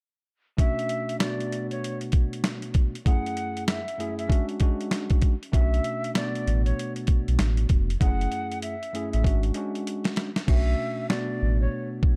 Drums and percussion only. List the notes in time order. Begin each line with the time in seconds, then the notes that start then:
0.58 kick, closed hi-hat
0.79 closed hi-hat
0.89 closed hi-hat
1.09 closed hi-hat
1.20 snare, closed hi-hat
1.40 closed hi-hat
1.52 closed hi-hat
1.71 closed hi-hat
1.84 closed hi-hat
2.01 closed hi-hat
2.12 kick, closed hi-hat
2.33 closed hi-hat
2.44 snare, closed hi-hat
2.62 closed hi-hat
2.74 kick, closed hi-hat
2.95 closed hi-hat
3.06 kick, closed hi-hat
3.26 closed hi-hat
3.37 closed hi-hat
3.57 closed hi-hat
3.68 snare, closed hi-hat
3.88 closed hi-hat
4.00 closed hi-hat
4.19 closed hi-hat
4.30 kick, closed hi-hat
4.49 closed hi-hat
4.60 kick, closed hi-hat
4.81 closed hi-hat
4.91 snare, closed hi-hat
5.10 kick, closed hi-hat
5.22 kick, closed hi-hat
5.43 closed hi-hat
5.53 kick, closed hi-hat
5.74 closed hi-hat
5.84 closed hi-hat
6.04 closed hi-hat
6.15 snare, closed hi-hat
6.35 closed hi-hat
6.47 closed hi-hat
6.66 closed hi-hat
6.79 closed hi-hat
6.96 closed hi-hat
7.07 kick, closed hi-hat
7.28 closed hi-hat
7.39 snare, closed hi-hat
7.57 closed hi-hat
7.69 kick, closed hi-hat
7.90 closed hi-hat
8.01 kick, closed hi-hat
8.21 closed hi-hat
8.32 closed hi-hat
8.52 closed hi-hat
8.62 closed hi-hat
8.83 closed hi-hat
8.95 closed hi-hat
9.13 closed hi-hat
9.24 kick, closed hi-hat
9.43 closed hi-hat
9.54 closed hi-hat
9.75 closed hi-hat
9.87 closed hi-hat
10.04 snare, closed hi-hat
10.16 snare, closed hi-hat
10.36 snare, closed hi-hat
10.48 kick, crash
11.10 snare
12.03 kick